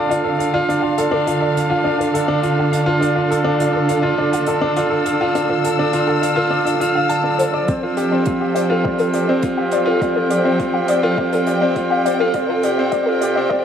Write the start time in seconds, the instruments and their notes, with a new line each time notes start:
Already playing: string section D3 C4 D4 A4 D5 F5, grand piano D4 F4 A4 F5
0.10 grand piano F4, synth arpeggio sound D5, closed hi-hat
0.24 grand piano A4, synth arpeggio sound A4
0.39 synth arpeggio sound D5, grand piano F5, closed hi-hat
0.53 grand piano F4, synth arpeggio sound D5
0.69 grand piano D4, closed hi-hat
0.82 grand piano F4, synth arpeggio sound F5
0.98 grand piano A4, synth arpeggio sound D5, closed hi-hat
1.11 grand piano D4, synth arpeggio sound A4
1.27 grand piano F4, synth arpeggio sound D5, closed hi-hat
1.40 grand piano A4, synth arpeggio sound D5
1.55 grand piano F5, closed hi-hat
1.70 grand piano F4, synth arpeggio sound F5
1.84 grand piano D4, synth arpeggio sound D5
1.98 grand piano F4, synth arpeggio sound A4, closed hi-hat
2.14 grand piano A4, synth arpeggio sound D5, closed hi-hat
2.28 grand piano D4, synth arpeggio sound D5
2.43 grand piano F4, closed hi-hat
2.58 grand piano A4, synth arpeggio sound F5
2.72 synth arpeggio sound D5, grand piano F5, closed hi-hat
2.86 grand piano F4, synth arpeggio sound A4
3.01 grand piano D4, synth arpeggio sound D5, closed hi-hat
3.16 grand piano F4
3.31 grand piano A4, closed hi-hat
3.44 grand piano D4, synth arpeggio sound F5
3.59 grand piano F4, synth arpeggio sound D5, closed hi-hat
3.73 grand piano A4, synth arpeggio sound A4
3.88 synth arpeggio sound D5, grand piano F5, closed hi-hat
4.03 grand piano F4, synth arpeggio sound D5
4.18 grand piano D4
4.32 grand piano F4, synth arpeggio sound F5, closed hi-hat
4.40 string section E6
4.46 grand piano A4, synth arpeggio sound D5, closed hi-hat
4.61 grand piano D4, synth arpeggio sound A4
4.76 grand piano F4, synth arpeggio sound D5, closed hi-hat
4.90 grand piano A4, synth arpeggio sound D5
5.06 grand piano F5, closed hi-hat
5.21 grand piano F4, synth arpeggio sound F5
5.35 grand piano D4, synth arpeggio sound D5, closed hi-hat
5.49 grand piano F4, synth arpeggio sound A4
5.64 grand piano A4, synth arpeggio sound D5, closed hi-hat
5.78 grand piano D4, synth arpeggio sound D5
5.93 grand piano F4, closed hi-hat
6.07 grand piano A4, synth arpeggio sound F5
6.21 synth arpeggio sound D5, grand piano F5, closed hi-hat
6.36 grand piano F4, synth arpeggio sound A4
6.50 grand piano D4, synth arpeggio sound D5
6.65 grand piano F4, synth arpeggio sound D5, closed hi-hat
6.80 grand piano F4, closed hi-hat
6.95 grand piano F5, synth arpeggio sound F5
7.09 synth arpeggio sound D5, grand piano A5, closed hi-hat
7.23 grand piano D4, synth arpeggio sound A4
7.38 grand piano A4, synth arpeggio sound C5, closed hi-hat
7.54 grand piano D5
7.68 string section F3, grand piano C4, synth arpeggio sound D5, kick, closed hi-hat
7.73 string section C4
7.83 grand piano F4, synth arpeggio sound A4, string section G5
7.97 grand piano G4, synth arpeggio sound D5, closed hi-hat
8.11 grand piano C4, synth arpeggio sound D5
8.25 grand piano F4, kick, closed hi-hat
8.40 grand piano G4, synth arpeggio sound F5
8.55 grand piano C5, synth arpeggio sound D5, closed hi-hat
8.70 grand piano F4, synth arpeggio sound A4
8.85 grand piano C4, synth arpeggio sound D5, kick
8.98 grand piano F4, synth arpeggio sound A4, closed hi-hat
9.13 grand piano G4, synth arpeggio sound D5, closed hi-hat
9.29 grand piano C4, synth arpeggio sound D5
9.42 grand piano F4, kick, closed hi-hat
9.57 grand piano G4, synth arpeggio sound F5
9.71 grand piano C5, synth arpeggio sound D5, closed hi-hat
9.86 grand piano F4, synth arpeggio sound A4
10.01 grand piano C4, synth arpeggio sound D5, kick, closed hi-hat
10.16 grand piano F4, synth arpeggio sound A4
10.30 grand piano G4, synth arpeggio sound D5, closed hi-hat
10.45 grand piano C4, synth arpeggio sound D5
10.59 grand piano F4, kick, closed hi-hat
10.74 grand piano G4, synth arpeggio sound F5
10.88 grand piano C5, synth arpeggio sound D5, closed hi-hat
11.03 grand piano F4, synth arpeggio sound A4
11.17 grand piano C4, synth arpeggio sound D5, kick
11.32 grand piano F4, synth arpeggio sound A4, closed hi-hat
11.47 grand piano G4, synth arpeggio sound D5, closed hi-hat
11.61 grand piano C4, synth arpeggio sound D5
11.76 grand piano F4, kick, closed hi-hat
11.90 grand piano G4, synth arpeggio sound F5
12.05 grand piano C5, synth arpeggio sound D5, closed hi-hat
12.20 grand piano F4, synth arpeggio sound A4
12.34 string section C3, grand piano C4, synth arpeggio sound D5, kick, closed hi-hat
12.49 grand piano F4, synth arpeggio sound A4
12.63 grand piano G4, synth arpeggio sound D5, closed hi-hat
12.78 grand piano C4, synth arpeggio sound D5
12.92 grand piano C4, synth arpeggio sound D5, kick, closed hi-hat
13.00 string section D5
13.06 grand piano F4, synth arpeggio sound A4
13.21 grand piano G4, synth arpeggio sound D5, closed hi-hat
13.36 grand piano C4, synth arpeggio sound D5
13.50 grand piano C4, synth arpeggio sound D5, kick